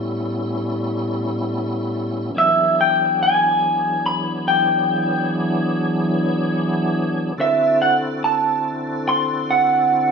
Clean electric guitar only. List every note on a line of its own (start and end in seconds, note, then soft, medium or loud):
0.00 1.49 C#5 medium
2.38 2.76 E5 medium
2.81 3.22 G5 medium
3.23 4.06 G#5 medium
4.06 4.44 B5 medium
4.48 5.26 G5 medium
7.41 7.82 E5 medium
7.82 7.93 F#5 medium
8.24 9.02 A5 medium
9.09 9.49 C6 medium
9.51 10.12 F#5 medium